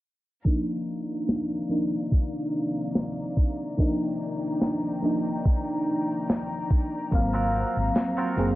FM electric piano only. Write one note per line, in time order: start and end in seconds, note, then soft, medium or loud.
0.45 1.66 F3 medium
0.45 1.66 A#3 medium
0.45 1.67 D4 medium
0.45 1.67 D#4 medium
1.69 3.74 F3 medium
1.69 3.74 A#3 medium
1.69 3.75 D4 medium
1.69 3.75 D#4 medium
3.77 4.99 F3 medium
3.77 4.99 A#3 medium
3.77 5.00 D4 medium
3.77 5.00 D#4 loud
5.02 7.07 F3 medium
5.02 7.07 A#3 medium
5.02 7.08 D4 medium
5.02 7.09 D#4 medium
7.11 8.32 F#3 medium
7.11 8.33 A#3 medium
7.11 8.33 C4 medium
7.11 8.34 F5 loud
8.36 8.55 F#3 medium
8.36 8.55 A#3 medium
8.36 8.55 C4 medium
8.36 8.55 G#4 medium